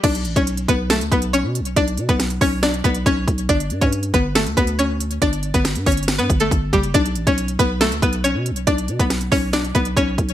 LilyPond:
<<
  \new Staff \with { instrumentName = "Synth pluck" } { \time 4/4 \key b \minor \tempo 4 = 139 <d' d''>8. <cis' cis''>8. <b b'>8 <a a'>8 <b b'>8 <cis' cis''>4 | <d' d''>8. <b b'>8. <cis' cis''>8 <d' d''>8 <b b'>8 <cis' cis''>4 | <d' d''>8. <cis' cis''>8. <b b'>8 <a a'>8 <b b'>8 <cis' cis''>4 | <d' d''>8. <b b'>8. <cis' cis''>8. <b b'>8 <a a'>8. <g g'>8 |
<d' d''>8. <cis' cis''>8. <b b'>8 <a a'>8 <b b'>8 <cis' cis''>4 | <d' d''>8. <b b'>8. <cis' cis''>8 <d' d''>8 <b b'>8 <cis' cis''>4 | }
  \new Staff \with { instrumentName = "808-style bass" } { \clef bass \time 4/4 \key b \minor b,,8 a,,16 b,,8. b,,8. d,16 b,,8. b,16. b,,16. | b,,8 b,16 b,,8. b,,4 b,,8 b,,8 b,,8 | g,,8 g,16 g,8. g,,8. d,16 d,4. | g,,8. g,,8 g,16 g,,8. g,16 g,,8 g,,8 fis,,8 |
b,,8 a,,16 b,,8. b,,8. d,16 b,,8. b,16. b,,16. | b,,8 b,16 b,,8. b,,4 b,,8 b,,8 b,,8 | }
  \new DrumStaff \with { instrumentName = "Drums" } \drummode { \time 4/4 <cymc hh bd>16 hh16 hh16 <hh bd>16 hh16 hh16 <hh bd>8 <hh sn>16 hh16 <hh bd>16 hh16 hh8 hh16 hh16 | <hh bd>16 hh16 hh16 <hh bd>16 <hh sn>16 hh16 <hho bd>8 <hh sn>16 hh16 <hh bd>16 hh16 <hh bd>8 <hh bd>16 hh16 | <hh bd>16 hh16 hh16 <hh bd>16 hh16 hh16 <hh bd>8 <hh sn>16 hh16 <hh bd>16 hh16 hh8 hh16 hh16 | <hh bd>16 hh16 hh16 <hh bd>16 <hh sn>16 hh16 <hh hho bd>32 hh32 hh32 hh32 <hh sn>16 hh16 <hh bd>16 hh16 <hh bd>8 <hh bd>16 hh16 |
<hh bd>16 hh16 hh16 <hh bd>16 hh16 hh16 <hh bd>8 <hh sn>16 hh16 <hh bd>16 hh16 hh8 hh16 hh16 | <hh bd>16 hh16 hh16 <hh bd>16 <hh sn>16 hh16 <hho bd>8 <hh sn>16 hh16 <hh bd>16 hh16 <hh bd>8 <hh bd>16 hh16 | }
>>